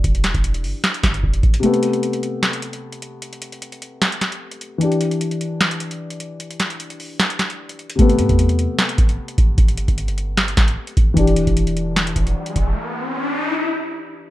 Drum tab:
HH |xxxxxxo-xxxx-xxx|xxxxxxx-xxxx-xx-|xxxxxxx-xxxx-xx-|xxxxxxx-xxxx-xx-|
SD |--o-----o-o-----|--------o-------|--------o-o-----|--------o-------|
BD |o--o------o-o-o-|----------------|----------------|----------------|

HH |xxxxxxo-xxxx-xxx|xxxxxxx-xxxx-xx-|xxxxxxx-xxxx-xx-|xxxxxxx-xxxx-xx-|
SD |--o-----o-o-----|--------o-------|--------o-o-----|--------o-------|
BD |----------------|o--o------o---o-|o--o------o---o-|o--o------o---o-|

HH |----------------|
SD |----------------|
BD |----------------|